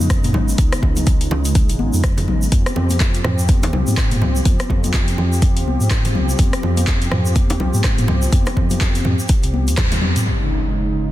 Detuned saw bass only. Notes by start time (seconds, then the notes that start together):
0.00 F2
0.34 G#1
0.58 C#2
0.83 C#2
1.31 C#2
1.69 G#1
1.79 G#1
1.94 F2
2.28 G#1
2.52 F2
2.76 F2
3.24 F2
3.63 D#2
3.73 C2
3.87 G#2
4.21 C2
4.45 F2
4.70 F2
5.18 F2
5.57 D#2
5.66 C2
5.81 G#2
6.15 C2
6.39 F2
6.63 F2
7.12 F2
7.50 D#2
7.60 C2
7.74 G#2
8.08 C2
8.33 F2
8.57 F2
9.05 F2
9.44 C2
9.68 D#2
10.02 F2